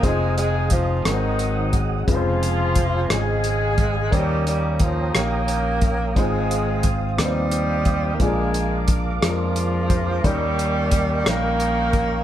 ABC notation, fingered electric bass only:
X:1
M:6/8
L:1/8
Q:3/8=59
K:Ab
V:1 name="Fingered electric bass" clef=bass
F,,,3 A,,,3 | F,,,3 A,,,3 | E,,3 B,,,3 | A,,,3 E,,3 |
B,,,3 F,,3 | E,,3 B,,,3 |]